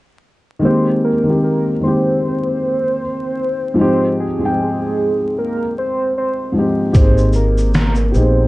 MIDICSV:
0, 0, Header, 1, 5, 480
1, 0, Start_track
1, 0, Key_signature, -4, "major"
1, 0, Tempo, 789474
1, 384, Time_signature, 4, 2, 24, 8
1, 5155, End_track
2, 0, Start_track
2, 0, Title_t, "Soft synth lead"
2, 0, Program_c, 0, 80
2, 393, Note_on_c, 0, 72, 99
2, 605, Note_off_c, 0, 72, 0
2, 633, Note_on_c, 0, 70, 76
2, 845, Note_off_c, 0, 70, 0
2, 874, Note_on_c, 0, 70, 88
2, 1085, Note_off_c, 0, 70, 0
2, 1114, Note_on_c, 0, 72, 82
2, 2285, Note_off_c, 0, 72, 0
2, 2313, Note_on_c, 0, 72, 109
2, 2525, Note_off_c, 0, 72, 0
2, 2552, Note_on_c, 0, 68, 89
2, 3274, Note_on_c, 0, 70, 79
2, 3283, Note_off_c, 0, 68, 0
2, 3486, Note_off_c, 0, 70, 0
2, 3516, Note_on_c, 0, 72, 77
2, 3727, Note_off_c, 0, 72, 0
2, 3755, Note_on_c, 0, 72, 74
2, 3966, Note_off_c, 0, 72, 0
2, 4234, Note_on_c, 0, 72, 98
2, 4446, Note_off_c, 0, 72, 0
2, 4471, Note_on_c, 0, 70, 80
2, 4684, Note_off_c, 0, 70, 0
2, 4712, Note_on_c, 0, 70, 86
2, 4925, Note_off_c, 0, 70, 0
2, 4954, Note_on_c, 0, 72, 82
2, 5155, Note_off_c, 0, 72, 0
2, 5155, End_track
3, 0, Start_track
3, 0, Title_t, "Felt piano"
3, 0, Program_c, 1, 0
3, 361, Note_on_c, 1, 51, 81
3, 371, Note_on_c, 1, 56, 74
3, 381, Note_on_c, 1, 58, 77
3, 391, Note_on_c, 1, 60, 76
3, 402, Note_on_c, 1, 67, 83
3, 504, Control_c, 1, 64, 127
3, 650, Note_off_c, 1, 51, 0
3, 655, Note_off_c, 1, 56, 0
3, 660, Note_off_c, 1, 58, 0
3, 665, Note_off_c, 1, 60, 0
3, 670, Note_off_c, 1, 67, 0
3, 749, Note_on_c, 1, 51, 68
3, 758, Note_on_c, 1, 56, 54
3, 769, Note_on_c, 1, 58, 55
3, 780, Note_on_c, 1, 60, 58
3, 789, Note_on_c, 1, 67, 71
3, 1023, Note_off_c, 1, 51, 0
3, 1028, Note_off_c, 1, 56, 0
3, 1033, Note_off_c, 1, 58, 0
3, 1039, Note_off_c, 1, 60, 0
3, 1044, Note_off_c, 1, 67, 0
3, 1097, Note_on_c, 1, 51, 63
3, 1107, Note_on_c, 1, 56, 51
3, 1118, Note_on_c, 1, 58, 56
3, 1127, Note_on_c, 1, 60, 56
3, 1139, Note_on_c, 1, 67, 70
3, 1826, Note_off_c, 1, 51, 0
3, 1831, Note_off_c, 1, 56, 0
3, 1837, Note_off_c, 1, 58, 0
3, 1841, Note_off_c, 1, 60, 0
3, 1847, Note_off_c, 1, 67, 0
3, 2275, Note_on_c, 1, 44, 82
3, 2284, Note_on_c, 1, 53, 83
3, 2292, Note_on_c, 1, 56, 70
3, 2301, Note_on_c, 1, 60, 76
3, 2309, Note_on_c, 1, 63, 75
3, 2313, Control_c, 1, 64, 0
3, 2317, Note_on_c, 1, 67, 97
3, 2436, Control_c, 1, 64, 127
3, 2567, Note_off_c, 1, 44, 0
3, 2571, Note_off_c, 1, 53, 0
3, 2575, Note_off_c, 1, 56, 0
3, 2580, Note_off_c, 1, 60, 0
3, 2584, Note_off_c, 1, 63, 0
3, 2588, Note_off_c, 1, 67, 0
3, 2665, Note_on_c, 1, 44, 61
3, 2672, Note_on_c, 1, 53, 65
3, 2682, Note_on_c, 1, 56, 61
3, 2689, Note_on_c, 1, 60, 61
3, 2697, Note_on_c, 1, 63, 57
3, 2707, Note_on_c, 1, 79, 78
3, 3399, Note_off_c, 1, 44, 0
3, 3403, Note_off_c, 1, 53, 0
3, 3407, Note_off_c, 1, 56, 0
3, 3411, Note_off_c, 1, 60, 0
3, 3415, Note_off_c, 1, 63, 0
3, 3420, Note_off_c, 1, 79, 0
3, 3964, Note_on_c, 1, 44, 61
3, 3972, Note_on_c, 1, 53, 61
3, 3981, Note_on_c, 1, 56, 56
3, 3988, Note_on_c, 1, 60, 60
3, 3997, Note_on_c, 1, 63, 59
3, 4004, Note_on_c, 1, 67, 72
3, 4166, Note_off_c, 1, 44, 0
3, 4169, Note_off_c, 1, 53, 0
3, 4174, Note_off_c, 1, 56, 0
3, 4178, Note_off_c, 1, 60, 0
3, 4182, Note_off_c, 1, 63, 0
3, 4186, Note_off_c, 1, 67, 0
3, 4213, Note_on_c, 1, 67, 84
3, 4222, Note_on_c, 1, 58, 84
3, 4232, Control_c, 1, 64, 0
3, 4232, Note_on_c, 1, 60, 70
3, 4244, Note_on_c, 1, 63, 73
3, 4254, Note_on_c, 1, 68, 93
3, 4345, Control_c, 1, 64, 127
3, 4773, Note_off_c, 1, 67, 0
3, 4778, Note_off_c, 1, 58, 0
3, 4783, Note_off_c, 1, 60, 0
3, 4788, Note_off_c, 1, 63, 0
3, 4794, Note_off_c, 1, 68, 0
3, 4935, Note_on_c, 1, 67, 65
3, 4944, Note_on_c, 1, 58, 59
3, 4954, Note_on_c, 1, 59, 43
3, 4966, Note_on_c, 1, 63, 59
3, 4975, Note_on_c, 1, 68, 69
3, 4995, Note_on_c, 1, 60, 53
3, 4996, Note_off_c, 1, 59, 0
3, 5155, Note_off_c, 1, 58, 0
3, 5155, Note_off_c, 1, 60, 0
3, 5155, Note_off_c, 1, 63, 0
3, 5155, Note_off_c, 1, 67, 0
3, 5155, Note_off_c, 1, 68, 0
3, 5155, End_track
4, 0, Start_track
4, 0, Title_t, "Upright bass"
4, 0, Program_c, 2, 32
4, 4227, Note_on_c, 2, 32, 96
4, 4921, Note_off_c, 2, 32, 0
4, 4950, Note_on_c, 2, 34, 84
4, 5155, Note_off_c, 2, 34, 0
4, 5155, End_track
5, 0, Start_track
5, 0, Title_t, "Drums"
5, 4223, Note_on_c, 9, 42, 70
5, 4223, Note_on_c, 9, 82, 72
5, 4225, Note_on_c, 9, 36, 109
5, 4284, Note_off_c, 9, 42, 0
5, 4284, Note_off_c, 9, 82, 0
5, 4286, Note_off_c, 9, 36, 0
5, 4364, Note_on_c, 9, 82, 42
5, 4425, Note_off_c, 9, 82, 0
5, 4456, Note_on_c, 9, 82, 44
5, 4517, Note_off_c, 9, 82, 0
5, 4607, Note_on_c, 9, 82, 48
5, 4668, Note_off_c, 9, 82, 0
5, 4709, Note_on_c, 9, 42, 58
5, 4709, Note_on_c, 9, 82, 59
5, 4712, Note_on_c, 9, 38, 107
5, 4769, Note_off_c, 9, 42, 0
5, 4769, Note_off_c, 9, 82, 0
5, 4773, Note_off_c, 9, 38, 0
5, 4835, Note_on_c, 9, 82, 51
5, 4895, Note_off_c, 9, 82, 0
5, 4950, Note_on_c, 9, 82, 39
5, 5011, Note_off_c, 9, 82, 0
5, 5155, End_track
0, 0, End_of_file